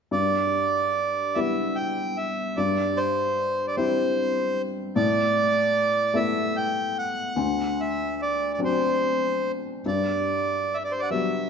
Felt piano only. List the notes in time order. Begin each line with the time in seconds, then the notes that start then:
0.11 G2
1.36 G3 B3 E4
2.58 G2
3.77 G3 C4 E4
4.96 A2
6.14 A3 B3 E4
7.36 D2
8.59 F#3 C4 D4
9.86 G2
11.10 F#3 G3 B3